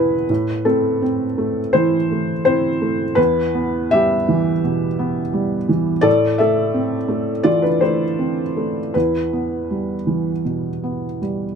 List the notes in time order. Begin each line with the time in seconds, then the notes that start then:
Already playing: E2 B2 E4 G#4 B4
0.30 A2
0.65 A3 C4 A4
1.02 C4
1.38 A3
1.73 E3 E4 C5
2.12 A3
2.45 C4 E4 C5
2.82 A3
3.15 E2 E4 B4
3.55 B3
3.91 G3 G4 E5
4.29 E3
4.64 B2
4.99 B3
5.33 G3
5.69 E3
6.01 A2 A4 D5
6.38 A3 A4 E5
6.74 C4
7.08 A3
7.43 E3 F4 D5
7.62 D4 B4
7.81 A3 E4 C5
8.19 C4
8.57 A3
8.94 E2 E4 B4
9.33 B3
9.70 G3
10.07 E3
10.45 B2
10.84 B3
11.22 G3